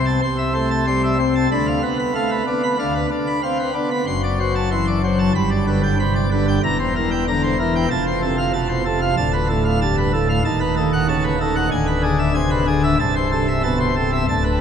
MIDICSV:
0, 0, Header, 1, 2, 480
1, 0, Start_track
1, 0, Key_signature, 0, "minor"
1, 0, Tempo, 638978
1, 1135, Time_signature, 4, 2, 24, 8
1, 10974, End_track
2, 0, Start_track
2, 0, Title_t, "Pipe organ"
2, 0, Program_c, 0, 19
2, 0, Note_on_c, 0, 36, 68
2, 0, Note_on_c, 0, 48, 68
2, 0, Note_on_c, 0, 60, 53
2, 43, Note_on_c, 0, 81, 55
2, 142, Note_off_c, 0, 60, 0
2, 151, Note_off_c, 0, 36, 0
2, 152, Note_off_c, 0, 48, 0
2, 152, Note_off_c, 0, 81, 0
2, 166, Note_on_c, 0, 36, 62
2, 167, Note_on_c, 0, 48, 61
2, 167, Note_on_c, 0, 84, 63
2, 275, Note_off_c, 0, 84, 0
2, 285, Note_on_c, 0, 76, 53
2, 394, Note_off_c, 0, 76, 0
2, 406, Note_on_c, 0, 72, 57
2, 408, Note_on_c, 0, 57, 51
2, 515, Note_off_c, 0, 72, 0
2, 532, Note_on_c, 0, 81, 63
2, 625, Note_off_c, 0, 57, 0
2, 640, Note_off_c, 0, 81, 0
2, 656, Note_on_c, 0, 55, 50
2, 656, Note_on_c, 0, 84, 59
2, 762, Note_off_c, 0, 84, 0
2, 776, Note_on_c, 0, 76, 50
2, 860, Note_off_c, 0, 55, 0
2, 883, Note_off_c, 0, 76, 0
2, 894, Note_on_c, 0, 60, 50
2, 896, Note_on_c, 0, 72, 59
2, 1003, Note_off_c, 0, 72, 0
2, 1018, Note_on_c, 0, 81, 60
2, 1099, Note_off_c, 0, 60, 0
2, 1106, Note_off_c, 0, 36, 0
2, 1106, Note_off_c, 0, 48, 0
2, 1119, Note_off_c, 0, 81, 0
2, 1138, Note_on_c, 0, 38, 68
2, 1138, Note_on_c, 0, 50, 70
2, 1140, Note_on_c, 0, 83, 78
2, 1245, Note_off_c, 0, 83, 0
2, 1256, Note_on_c, 0, 77, 56
2, 1341, Note_off_c, 0, 38, 0
2, 1342, Note_off_c, 0, 50, 0
2, 1363, Note_off_c, 0, 77, 0
2, 1373, Note_on_c, 0, 59, 53
2, 1373, Note_on_c, 0, 71, 56
2, 1482, Note_off_c, 0, 71, 0
2, 1496, Note_on_c, 0, 83, 59
2, 1589, Note_off_c, 0, 59, 0
2, 1604, Note_off_c, 0, 83, 0
2, 1613, Note_on_c, 0, 57, 46
2, 1615, Note_on_c, 0, 77, 66
2, 1723, Note_off_c, 0, 77, 0
2, 1735, Note_on_c, 0, 71, 59
2, 1819, Note_off_c, 0, 57, 0
2, 1843, Note_off_c, 0, 71, 0
2, 1857, Note_on_c, 0, 62, 57
2, 1859, Note_on_c, 0, 59, 52
2, 1964, Note_off_c, 0, 62, 0
2, 1978, Note_on_c, 0, 83, 55
2, 2072, Note_off_c, 0, 59, 0
2, 2084, Note_off_c, 0, 83, 0
2, 2095, Note_on_c, 0, 38, 64
2, 2096, Note_on_c, 0, 50, 58
2, 2096, Note_on_c, 0, 77, 60
2, 2203, Note_off_c, 0, 77, 0
2, 2216, Note_on_c, 0, 71, 55
2, 2299, Note_off_c, 0, 38, 0
2, 2299, Note_off_c, 0, 50, 0
2, 2323, Note_off_c, 0, 71, 0
2, 2336, Note_on_c, 0, 62, 58
2, 2457, Note_on_c, 0, 83, 63
2, 2551, Note_off_c, 0, 62, 0
2, 2564, Note_off_c, 0, 83, 0
2, 2575, Note_on_c, 0, 77, 59
2, 2576, Note_on_c, 0, 60, 48
2, 2683, Note_off_c, 0, 77, 0
2, 2700, Note_on_c, 0, 71, 58
2, 2781, Note_off_c, 0, 60, 0
2, 2806, Note_off_c, 0, 71, 0
2, 2813, Note_on_c, 0, 59, 50
2, 2813, Note_on_c, 0, 62, 59
2, 2922, Note_off_c, 0, 62, 0
2, 2937, Note_on_c, 0, 83, 56
2, 3019, Note_off_c, 0, 59, 0
2, 3040, Note_off_c, 0, 83, 0
2, 3056, Note_on_c, 0, 30, 68
2, 3056, Note_on_c, 0, 42, 68
2, 3058, Note_on_c, 0, 84, 84
2, 3165, Note_off_c, 0, 84, 0
2, 3182, Note_on_c, 0, 74, 60
2, 3287, Note_off_c, 0, 74, 0
2, 3302, Note_on_c, 0, 72, 58
2, 3303, Note_on_c, 0, 54, 59
2, 3407, Note_off_c, 0, 72, 0
2, 3421, Note_on_c, 0, 81, 56
2, 3513, Note_off_c, 0, 54, 0
2, 3525, Note_off_c, 0, 81, 0
2, 3543, Note_on_c, 0, 52, 49
2, 3544, Note_on_c, 0, 84, 65
2, 3647, Note_off_c, 0, 84, 0
2, 3661, Note_on_c, 0, 74, 57
2, 3742, Note_off_c, 0, 52, 0
2, 3765, Note_off_c, 0, 74, 0
2, 3784, Note_on_c, 0, 54, 54
2, 3784, Note_on_c, 0, 72, 61
2, 3886, Note_off_c, 0, 72, 0
2, 3898, Note_on_c, 0, 81, 52
2, 3983, Note_off_c, 0, 54, 0
2, 3984, Note_off_c, 0, 30, 0
2, 3984, Note_off_c, 0, 42, 0
2, 3998, Note_off_c, 0, 81, 0
2, 4019, Note_on_c, 0, 31, 73
2, 4020, Note_on_c, 0, 43, 78
2, 4020, Note_on_c, 0, 83, 84
2, 4125, Note_off_c, 0, 83, 0
2, 4138, Note_on_c, 0, 74, 57
2, 4243, Note_off_c, 0, 74, 0
2, 4262, Note_on_c, 0, 50, 57
2, 4262, Note_on_c, 0, 71, 62
2, 4366, Note_off_c, 0, 71, 0
2, 4383, Note_on_c, 0, 79, 62
2, 4472, Note_off_c, 0, 50, 0
2, 4486, Note_off_c, 0, 79, 0
2, 4503, Note_on_c, 0, 83, 63
2, 4505, Note_on_c, 0, 48, 50
2, 4606, Note_off_c, 0, 83, 0
2, 4624, Note_on_c, 0, 74, 58
2, 4704, Note_off_c, 0, 48, 0
2, 4726, Note_off_c, 0, 74, 0
2, 4745, Note_on_c, 0, 71, 59
2, 4746, Note_on_c, 0, 50, 52
2, 4847, Note_off_c, 0, 71, 0
2, 4868, Note_on_c, 0, 79, 61
2, 4945, Note_off_c, 0, 50, 0
2, 4947, Note_off_c, 0, 31, 0
2, 4948, Note_off_c, 0, 43, 0
2, 4964, Note_off_c, 0, 79, 0
2, 4982, Note_on_c, 0, 28, 72
2, 4983, Note_on_c, 0, 40, 73
2, 4985, Note_on_c, 0, 82, 92
2, 5087, Note_off_c, 0, 82, 0
2, 5104, Note_on_c, 0, 72, 64
2, 5207, Note_off_c, 0, 72, 0
2, 5226, Note_on_c, 0, 70, 61
2, 5228, Note_on_c, 0, 52, 61
2, 5328, Note_off_c, 0, 70, 0
2, 5341, Note_on_c, 0, 79, 61
2, 5436, Note_off_c, 0, 52, 0
2, 5445, Note_off_c, 0, 79, 0
2, 5467, Note_on_c, 0, 82, 69
2, 5468, Note_on_c, 0, 50, 53
2, 5568, Note_off_c, 0, 82, 0
2, 5584, Note_on_c, 0, 72, 64
2, 5665, Note_off_c, 0, 50, 0
2, 5686, Note_off_c, 0, 72, 0
2, 5704, Note_on_c, 0, 52, 60
2, 5707, Note_on_c, 0, 70, 63
2, 5807, Note_off_c, 0, 70, 0
2, 5825, Note_on_c, 0, 79, 57
2, 5902, Note_off_c, 0, 52, 0
2, 5907, Note_off_c, 0, 28, 0
2, 5908, Note_off_c, 0, 40, 0
2, 5921, Note_off_c, 0, 79, 0
2, 5940, Note_on_c, 0, 81, 95
2, 5941, Note_on_c, 0, 29, 77
2, 5941, Note_on_c, 0, 41, 79
2, 6043, Note_off_c, 0, 81, 0
2, 6062, Note_on_c, 0, 72, 57
2, 6163, Note_off_c, 0, 72, 0
2, 6177, Note_on_c, 0, 69, 62
2, 6179, Note_on_c, 0, 48, 56
2, 6280, Note_off_c, 0, 69, 0
2, 6293, Note_on_c, 0, 77, 69
2, 6387, Note_off_c, 0, 48, 0
2, 6397, Note_off_c, 0, 77, 0
2, 6409, Note_on_c, 0, 81, 66
2, 6410, Note_on_c, 0, 47, 57
2, 6515, Note_off_c, 0, 81, 0
2, 6530, Note_on_c, 0, 72, 63
2, 6613, Note_off_c, 0, 47, 0
2, 6636, Note_off_c, 0, 72, 0
2, 6650, Note_on_c, 0, 48, 60
2, 6650, Note_on_c, 0, 69, 61
2, 6756, Note_off_c, 0, 69, 0
2, 6771, Note_on_c, 0, 77, 68
2, 6853, Note_off_c, 0, 48, 0
2, 6863, Note_off_c, 0, 29, 0
2, 6863, Note_off_c, 0, 41, 0
2, 6871, Note_off_c, 0, 77, 0
2, 6889, Note_on_c, 0, 26, 81
2, 6891, Note_on_c, 0, 81, 97
2, 6892, Note_on_c, 0, 38, 74
2, 6996, Note_off_c, 0, 81, 0
2, 7010, Note_on_c, 0, 71, 70
2, 7116, Note_off_c, 0, 71, 0
2, 7128, Note_on_c, 0, 45, 60
2, 7130, Note_on_c, 0, 69, 62
2, 7235, Note_off_c, 0, 69, 0
2, 7248, Note_on_c, 0, 77, 64
2, 7341, Note_off_c, 0, 45, 0
2, 7354, Note_off_c, 0, 77, 0
2, 7373, Note_on_c, 0, 81, 69
2, 7374, Note_on_c, 0, 43, 55
2, 7477, Note_off_c, 0, 81, 0
2, 7493, Note_on_c, 0, 71, 70
2, 7574, Note_off_c, 0, 43, 0
2, 7597, Note_off_c, 0, 71, 0
2, 7611, Note_on_c, 0, 45, 63
2, 7612, Note_on_c, 0, 69, 73
2, 7715, Note_off_c, 0, 69, 0
2, 7731, Note_on_c, 0, 77, 63
2, 7811, Note_off_c, 0, 45, 0
2, 7816, Note_off_c, 0, 26, 0
2, 7817, Note_off_c, 0, 38, 0
2, 7830, Note_off_c, 0, 77, 0
2, 7849, Note_on_c, 0, 81, 101
2, 7850, Note_on_c, 0, 39, 89
2, 7851, Note_on_c, 0, 27, 84
2, 7953, Note_off_c, 0, 81, 0
2, 7964, Note_on_c, 0, 71, 69
2, 8071, Note_off_c, 0, 71, 0
2, 8087, Note_on_c, 0, 69, 69
2, 8088, Note_on_c, 0, 51, 66
2, 8192, Note_off_c, 0, 69, 0
2, 8210, Note_on_c, 0, 78, 79
2, 8300, Note_off_c, 0, 51, 0
2, 8314, Note_off_c, 0, 78, 0
2, 8325, Note_on_c, 0, 49, 59
2, 8328, Note_on_c, 0, 81, 74
2, 8433, Note_off_c, 0, 81, 0
2, 8443, Note_on_c, 0, 71, 69
2, 8528, Note_off_c, 0, 49, 0
2, 8550, Note_off_c, 0, 71, 0
2, 8569, Note_on_c, 0, 51, 64
2, 8569, Note_on_c, 0, 69, 63
2, 8673, Note_off_c, 0, 69, 0
2, 8681, Note_on_c, 0, 78, 75
2, 8769, Note_off_c, 0, 51, 0
2, 8776, Note_off_c, 0, 27, 0
2, 8776, Note_off_c, 0, 39, 0
2, 8783, Note_off_c, 0, 78, 0
2, 8796, Note_on_c, 0, 38, 83
2, 8797, Note_on_c, 0, 26, 81
2, 8799, Note_on_c, 0, 80, 102
2, 8907, Note_off_c, 0, 80, 0
2, 8919, Note_on_c, 0, 71, 75
2, 9027, Note_off_c, 0, 71, 0
2, 9035, Note_on_c, 0, 68, 72
2, 9036, Note_on_c, 0, 50, 63
2, 9145, Note_off_c, 0, 68, 0
2, 9157, Note_on_c, 0, 76, 65
2, 9254, Note_off_c, 0, 50, 0
2, 9267, Note_off_c, 0, 76, 0
2, 9275, Note_on_c, 0, 48, 59
2, 9275, Note_on_c, 0, 80, 75
2, 9386, Note_off_c, 0, 80, 0
2, 9395, Note_on_c, 0, 71, 65
2, 9484, Note_off_c, 0, 48, 0
2, 9507, Note_off_c, 0, 71, 0
2, 9518, Note_on_c, 0, 50, 69
2, 9518, Note_on_c, 0, 68, 71
2, 9629, Note_off_c, 0, 68, 0
2, 9640, Note_on_c, 0, 76, 69
2, 9726, Note_off_c, 0, 50, 0
2, 9735, Note_off_c, 0, 38, 0
2, 9736, Note_off_c, 0, 26, 0
2, 9745, Note_off_c, 0, 76, 0
2, 9761, Note_on_c, 0, 81, 98
2, 9763, Note_on_c, 0, 24, 81
2, 9765, Note_on_c, 0, 36, 92
2, 9871, Note_off_c, 0, 81, 0
2, 9885, Note_on_c, 0, 72, 68
2, 9993, Note_off_c, 0, 72, 0
2, 10005, Note_on_c, 0, 48, 65
2, 10006, Note_on_c, 0, 69, 74
2, 10113, Note_off_c, 0, 69, 0
2, 10124, Note_on_c, 0, 76, 75
2, 10220, Note_off_c, 0, 48, 0
2, 10233, Note_off_c, 0, 76, 0
2, 10240, Note_on_c, 0, 47, 59
2, 10240, Note_on_c, 0, 81, 73
2, 10350, Note_off_c, 0, 81, 0
2, 10367, Note_on_c, 0, 72, 65
2, 10447, Note_off_c, 0, 47, 0
2, 10474, Note_off_c, 0, 72, 0
2, 10487, Note_on_c, 0, 48, 63
2, 10487, Note_on_c, 0, 69, 64
2, 10594, Note_off_c, 0, 69, 0
2, 10609, Note_on_c, 0, 76, 69
2, 10692, Note_off_c, 0, 48, 0
2, 10697, Note_off_c, 0, 24, 0
2, 10698, Note_off_c, 0, 36, 0
2, 10710, Note_off_c, 0, 76, 0
2, 10731, Note_on_c, 0, 81, 97
2, 10732, Note_on_c, 0, 38, 83
2, 10733, Note_on_c, 0, 26, 84
2, 10837, Note_off_c, 0, 81, 0
2, 10846, Note_on_c, 0, 71, 72
2, 10953, Note_off_c, 0, 71, 0
2, 10974, Note_off_c, 0, 26, 0
2, 10974, Note_off_c, 0, 38, 0
2, 10974, End_track
0, 0, End_of_file